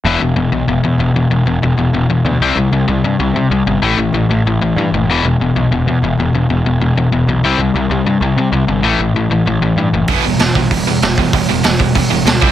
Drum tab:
HH |--------|--------|--------|--------|
SD |--------|--------|--------|--------|
BD |--------|--------|--------|--------|

HH |--------|--------|--------|--------|
SD |--------|--------|--------|--------|
BD |--------|--------|--------|--------|

HH |o-o-o-o-|o-o-o-o-|
SD |--o---o-|--o---o-|
BD |o--oo--o|o--oo--o|